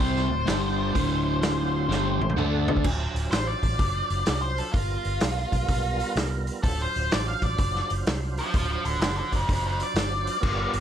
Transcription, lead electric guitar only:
0.00 C5
3.31 C5
3.47 D5
4.42 C5
4.58 A4
4.72 F4
6.63 A4
6.82 C5
7.12 D5
7.28 F5
7.43 D5
8.39 C5 F5
8.56 C5 F5
8.72 C5 F5
8.85 A4 D5
9.01 A4 D5
9.17 A4 D5
9.35 A4 C5
9.52 A4 C5
9.66 A4 C5
9.83 D5

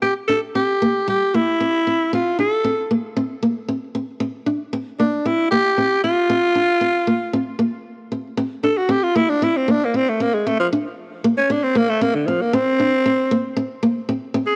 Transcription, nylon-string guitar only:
0.02 C4
0.29 D4
0.55 C4
0.82 A#3
1.08 G3
1.34 A#3
1.61 C4
1.87 C4
2.13 C4
2.39 D4
2.64 C4
2.91 A#3
3.16 C4
3.42 A#3
3.68 C4
3.95 C4
4.20 C4
4.46 D4
4.73 C4
4.99 A#3
5.25 C4
5.52 A#3
5.78 C4
6.04 C4
6.30 C4
6.55 D4
6.81 C4
7.07 A#3
7.33 C4
7.59 A#3
8.12 C4
8.37 C4
8.64 D4
8.89 C4
9.16 A#3
9.42 C4
9.68 A#3
9.94 C4
10.20 C4
10.47 C4
10.73 D4
11.24 A#3
11.50 C4
11.75 A#3
12.01 C4
12.28 C4
12.53 C4
12.80 D4
13.06 C4
13.31 A#3
13.57 C4
13.83 A#3
14.09 C4
14.34 C4

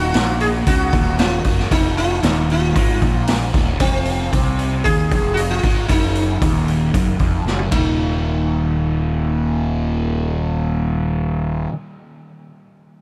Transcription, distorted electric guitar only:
Already playing: D#2
0.15 A#2
0.67 C#3
0.93 D#2
1.45 F#2
1.72 F2
2.23 D#2
2.75 G#2
3.02 A#2
3.53 D#2
3.79 F2
4.32 C3
4.84 D#3
5.10 F2
5.63 G#2
5.87 F#2
6.41 D#2
6.93 F#2
7.20 F2
7.46 F#2
7.71 D#2 A#2 D#3

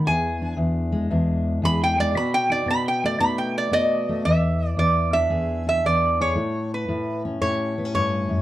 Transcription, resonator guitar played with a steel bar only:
0.07 G#5
1.65 B5
1.84 G5
2.00 D5
2.17 B5
2.34 G5
2.52 D5
2.71 B5
2.88 G5
3.06 D5
3.21 B5
3.38 G5
3.58 D5
3.73 D5 D#5
4.25 E5
4.68 D5
4.79 D5
5.13 E5
5.69 E5
5.86 D5
6.21 C#5
6.74 B4
7.42 C#5
7.95 C#5

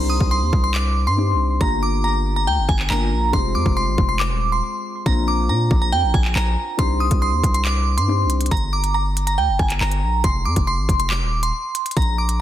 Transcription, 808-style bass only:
Already playing: C2
0.21 C2
0.42 D#2
0.53 C2
1.07 G2
1.34 C2
1.61 G1
2.47 D2
2.58 G1
2.69 G1
2.90 G1
3.12 A#1
3.33 F1
3.55 F2
3.66 F1
3.87 G#1
3.98 F1
4.31 D#1
5.06 A#1
5.49 A#2
5.71 A#1
5.92 F2
6.03 A#1
6.14 A#1
6.36 A#1
6.79 C2
7.11 C2
7.33 D#2
7.43 C2
7.97 G2
8.25 C2
8.51 G1
9.38 D2
9.49 G1
9.59 G1
9.81 G1
10.02 A#1
10.24 F1
10.46 F2
10.56 F1
10.78 G#1
10.89 F1
11.21 D#1
11.97 A#1

